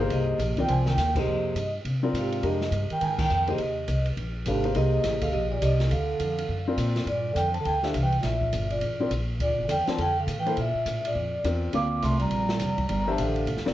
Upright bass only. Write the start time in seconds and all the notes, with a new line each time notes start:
0.10 C2
0.38 A#1
0.68 C2
0.97 D#2
1.27 F2
1.55 G2
1.85 C3
2.13 G#2
2.43 F2
2.71 G2
2.90 muted upright bass stroke
3.01 G#2
3.31 F2
3.59 D#2
3.88 C2
4.17 A#1
4.46 G#1
4.76 C2
5.04 A1
5.34 A#1
5.62 C2
5.91 D2
6.20 F2
6.48 F#2
6.77 A#2
7.06 G2
7.35 F2
7.66 D2
7.95 C2
8.24 A#1
8.53 G1
8.82 A1
9.11 A#1
9.40 D2
9.49 A#1
9.59 G1
9.69 E2
9.88 muted upright bass stroke
9.98 F2
10.27 A2
10.57 A#2
10.74 muted upright bass stroke
10.86 A2
11.15 F2
11.44 E2
11.74 D2
12.03 C2
12.31 A#1
12.60 F1
12.89 G1
13.19 A1
13.47 A#1
13.57 G1
13.66 F1